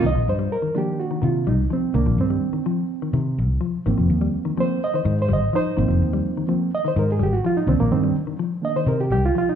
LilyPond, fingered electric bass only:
\new Staff \with { instrumentName = "Fingered electric bass" } { \clef bass \time 4/4 \key c \minor \tempo 4 = 126 c,16 bes,,16 g,8 r4. c8 c,8 r8 | c,16 bes,,16 g,8 r4. c8 c,8 r8 | aes,,16 f,,16 ees,8 r4. aes,8 aes,,8 r8 | aes,,16 f,,16 ees,8 r4. aes,8 aes,,8 r8 |
c,16 bes,,16 g,8 r4. c8 c,8 r8 | }